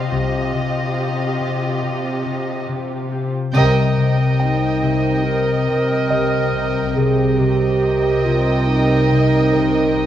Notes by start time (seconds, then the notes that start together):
Already playing: C4 C5 F5 C6
0.10 C2 C3 F4 G4 D#5
0.54 C3
0.97 C4
1.40 C3
1.82 C3
2.25 C3
2.68 C3
3.11 C4
3.54 C2 C3 A#4 D#5 G5, triangle
3.97 C3
4.39 C4 D#4 G5
4.82 C3
5.25 C4 A#4
5.68 C3
6.10 C3 D#5
6.54 C3
6.95 C2 C3 G#4 A#4 D#5 G5
7.39 C3 G4
7.82 C4
8.25 C3 F4
8.67 C4 D#4
9.11 C3
9.53 C3 A#4
9.97 C3